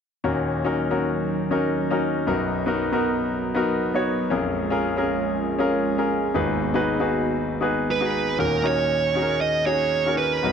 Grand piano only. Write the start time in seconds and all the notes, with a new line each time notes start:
0.24 D#2 A#2 C#4 D#4 F#4 A#4
0.64 C#4 D#4 F#4 A#4
0.90 C#4 D#4 F#4 A#4
1.51 C#4 D#4 F#4 A#4
1.90 C#4 D#4 F#4 A#4
2.27 B1 F#2 B3 D#4 F#4 A#4
2.66 B3 D#4 F#4 A#4
2.92 B3 D#4 F#4 A#4
3.55 B3 D#4 F#4 A#4
3.94 B3 D#4 F#4 C#5
4.30 A#1 F2 C#4 F4 G#4 A#4
4.70 C#4 F4 G#4 A#4
4.97 C#4 F4 G#4 A#4
5.59 C#4 F4 G#4 A#4
5.98 C#4 F4 G#4 A#4
6.34 G#1 D#2 D#4 F#4 G#4 B4
6.74 D#4 F#4 G#4 B4
7.00 D#4 F#4 G#4 B4
7.61 D#4 F#4 G#4 B4
8.01 D#4 F#4 G#4 B4
8.38 D#2 A#2 C#4 D#4 F#4 A#4
8.63 C#4 D#4 F#4 A#4
9.15 C#4 D#4 F#4 G#4
9.22 A#4
9.66 C#4 D#4 F#4 G#4
10.06 C#4 D#4 F#4 A#4
10.43 B1 F#2 B3 D#4 F#4 A#4